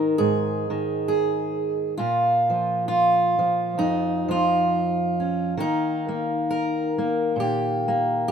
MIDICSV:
0, 0, Header, 1, 2, 480
1, 0, Start_track
1, 0, Tempo, 898473
1, 1059, Time_signature, 4, 2, 24, 8
1, 4443, End_track
2, 0, Start_track
2, 0, Title_t, "Steel-string acoustic guitar"
2, 0, Program_c, 0, 25
2, 0, Note_on_c, 0, 44, 70
2, 0, Note_on_c, 0, 51, 60
2, 0, Note_on_c, 0, 60, 46
2, 0, Note_on_c, 0, 63, 91
2, 0, Note_on_c, 0, 70, 99
2, 93, Note_off_c, 0, 44, 0
2, 95, Note_off_c, 0, 70, 0
2, 97, Note_off_c, 0, 63, 0
2, 98, Note_on_c, 0, 68, 89
2, 99, Note_on_c, 0, 44, 61
2, 368, Note_off_c, 0, 51, 0
2, 374, Note_on_c, 0, 51, 60
2, 572, Note_off_c, 0, 68, 0
2, 579, Note_on_c, 0, 68, 84
2, 1034, Note_off_c, 0, 44, 0
2, 1038, Note_off_c, 0, 60, 0
2, 1053, Note_off_c, 0, 68, 0
2, 1055, Note_on_c, 0, 65, 82
2, 1059, Note_off_c, 0, 51, 0
2, 1063, Note_on_c, 0, 46, 73
2, 1334, Note_on_c, 0, 53, 53
2, 1532, Note_off_c, 0, 65, 0
2, 1539, Note_on_c, 0, 65, 90
2, 1807, Note_off_c, 0, 53, 0
2, 1810, Note_on_c, 0, 53, 61
2, 2018, Note_on_c, 0, 41, 62
2, 2020, Note_off_c, 0, 46, 0
2, 2023, Note_on_c, 0, 63, 82
2, 2287, Note_off_c, 0, 53, 0
2, 2289, Note_on_c, 0, 53, 64
2, 2293, Note_off_c, 0, 65, 0
2, 2301, Note_on_c, 0, 65, 76
2, 2774, Note_off_c, 0, 63, 0
2, 2777, Note_on_c, 0, 61, 44
2, 2956, Note_off_c, 0, 61, 0
2, 2976, Note_off_c, 0, 53, 0
2, 2978, Note_off_c, 0, 41, 0
2, 2978, Note_on_c, 0, 51, 78
2, 2982, Note_off_c, 0, 65, 0
2, 2982, Note_on_c, 0, 58, 48
2, 2994, Note_on_c, 0, 63, 85
2, 3244, Note_off_c, 0, 58, 0
2, 3250, Note_on_c, 0, 58, 60
2, 3475, Note_on_c, 0, 70, 86
2, 3724, Note_off_c, 0, 58, 0
2, 3730, Note_on_c, 0, 58, 59
2, 3931, Note_on_c, 0, 46, 64
2, 3945, Note_off_c, 0, 63, 0
2, 3946, Note_off_c, 0, 70, 0
2, 3953, Note_on_c, 0, 67, 83
2, 4203, Note_off_c, 0, 58, 0
2, 4210, Note_on_c, 0, 58, 61
2, 4418, Note_off_c, 0, 67, 0
2, 4425, Note_on_c, 0, 67, 90
2, 4443, Note_off_c, 0, 46, 0
2, 4443, Note_off_c, 0, 51, 0
2, 4443, Note_off_c, 0, 58, 0
2, 4443, Note_off_c, 0, 67, 0
2, 4443, End_track
0, 0, End_of_file